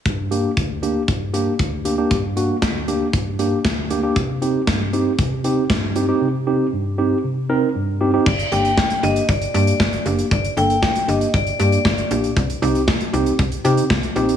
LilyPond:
<<
  \new Staff \with { instrumentName = "Vibraphone" } { \time 4/4 \key g \minor \tempo 4 = 117 r1 | r1 | r1 | r1 |
d''8 g''4 ees''8 d''8 d''4 r8 | d''8 g''4 ees''8 d''8 d''4 r8 | r1 | }
  \new Staff \with { instrumentName = "Tine electric piano" } { \time 4/4 \key g \minor r8 <bes d' g'>16 r8. <bes d' g'>16 r8. <bes d' g'>16 r8. <bes d' g'>16 <bes d' g'>16 | r8 <bes d' fis'>16 r8. <bes d' g'>16 r8. <bes d' g'>16 r8. <bes d' g'>16 <bes d' g'>16 | r8 <c' ees' g'>16 r8. <c' ees' g'>16 r8. <c' ees' g'>16 r8. <c' ees' g'>16 <c' ees' g'>16 | r8 <c' ees' g'>16 r8. <c' ees' g'>16 r8. <c' ees' bes'>16 r8. <c' ees' g'>16 <c' ees' g'>16 |
r8 <bes d' g'>16 r8. <bes d' g'>16 r8. <bes d' g'>16 r8. <bes d' g'>16 r16 | r8 <bes d' a'>16 r8. <bes d' g'>16 r8. <bes d' g'>16 r8. <bes d' g'>16 r16 | r8 <c' ees' g'>16 r8. <c' ees' g'>16 r8. <c' ees' g'>16 r8. <c' ees' g'>16 r16 | }
  \new Staff \with { instrumentName = "Tine electric piano" } { \clef bass \time 4/4 \key g \minor g,4 d,4 g,4 d,4 | g,4 d,4 g,4 d,4 | c4 g,4 c4 g,4 | c4 g,4 c4 g,4 |
r1 | r1 | r1 | }
  \new Staff \with { instrumentName = "FM bass" } { \clef bass \time 4/4 \key g \minor r1 | r1 | r1 | r1 |
g,,8 g,,8. r16 g,,8 g,,8 g,8 g,,8 fis,,8 | g,,8 g,,8. r16 g,,8 g,,8 g,8 g,,8 bes,,8 | c,8 c,8. r16 c,8 c,8 c8 c,8 bes,,8 | }
  \new DrumStaff \with { instrumentName = "Drums" } \drummode { \time 4/4 <hh bd>8 hh8 <hh bd>8 hh8 <hh bd>8 hh8 <hh bd>8 hh8 | <hh bd>8 hh8 <hh bd sn>8 hh8 <hh bd>8 hh8 <hh bd sn>8 hh8 | <hh bd>8 hh8 <hh bd sn>8 hh8 <hh bd>8 hh8 <hh bd sn>8 hh8 | r4 r4 r4 r4 |
<cymc bd>16 hh16 hh16 hh16 <bd sn>16 hh16 hh16 hh16 <hh bd>16 hh16 hh16 hh16 <bd sn>16 hh16 hh16 hh16 | <hh bd>16 hh16 hh16 hh16 <bd sn>16 hh16 hh16 hh16 <hh bd>16 hh16 hh16 hh16 <bd sn>16 hh16 hh16 hh16 | <hh bd>16 hh16 hh16 hh16 <bd sn>16 hh16 hh16 hh16 <hh bd>16 hh16 hh16 hh16 <bd sn>16 hh16 hh16 hh16 | }
>>